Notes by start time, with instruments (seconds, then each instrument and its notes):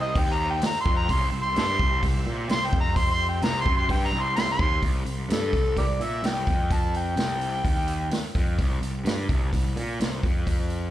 Already playing: picked electric bass C2, tonewheel organ G4 C5 E5
0.02 harmonica D#5
0.15 picked electric bass D#2, harmonica G5, kick, open hi-hat
0.34 harmonica A#5
0.50 harmonica G5
0.61 muted picked electric bass stroke, snare, open hi-hat
0.66 harmonica A#5
0.81 harmonica C6
0.86 picked electric bass F2, kick
0.96 harmonica A#5
1.08 picked electric bass C2, tonewheel organ G#4 C#5 F5, harmonica C6, kick, open hi-hat
1.23 tonewheel organ G4 C5 E5
1.32 picked electric bass C2
1.42 harmonica C6
1.56 picked electric bass G2, harmonica E5 A5 C6, snare, open hi-hat
1.79 picked electric bass C2, kick
2.03 picked electric bass C2, kick, open hi-hat
2.27 picked electric bass A#2
2.49 picked electric bass C2, harmonica C6, snare, open hi-hat
2.66 harmonica G5
2.73 picked electric bass F2, kick
2.81 harmonica A#5
2.96 harmonica C6, kick, open hi-hat
3.11 harmonica C6
3.29 harmonica G5
3.42 picked electric bass C2, harmonica A#5, snare, open hi-hat
3.60 harmonica C6
3.65 picked electric bass F#2, kick
3.76 harmonica C6
3.89 picked electric bass G2, harmonica G5, kick, open hi-hat
4.06 harmonica A#5
4.12 picked electric bass C2
4.22 harmonica C6
4.36 harmonica C6, snare, open hi-hat
4.52 harmonica C6
4.59 picked electric bass D#2, kick
4.82 picked electric bass C2, kick, open hi-hat
5.05 picked electric bass C2, open hi-hat
5.29 picked electric bass G2, harmonica A4, snare, open hi-hat
5.53 picked electric bass C2, kick, open hi-hat
5.77 picked electric bass C2, harmonica G4 A#4 D5, kick, open hi-hat
6.00 picked electric bass A#2, harmonica E5, open hi-hat
6.23 picked electric bass C2, harmonica G5, snare, open hi-hat
6.47 picked electric bass F2, kick, open hi-hat
6.70 harmonica A5, kick, open hi-hat
6.94 harmonica G5, open hi-hat
7.16 picked electric bass C2, snare, open hi-hat
7.41 open hi-hat
7.65 picked electric bass D#2, kick, open hi-hat
7.88 open hi-hat
8.10 muted picked electric bass stroke, snare, open hi-hat
8.35 picked electric bass F2, kick, open hi-hat
8.58 picked electric bass C2, kick, open hi-hat
8.81 picked electric bass C2, open hi-hat
9.04 picked electric bass G2, snare, open hi-hat
9.29 picked electric bass C2, kick, open hi-hat
9.53 picked electric bass C2, kick, open hi-hat
9.76 picked electric bass A#2, open hi-hat
10.00 picked electric bass C2, snare, open hi-hat
10.23 picked electric bass F2, kick, open hi-hat
10.47 kick, open hi-hat
10.70 open hi-hat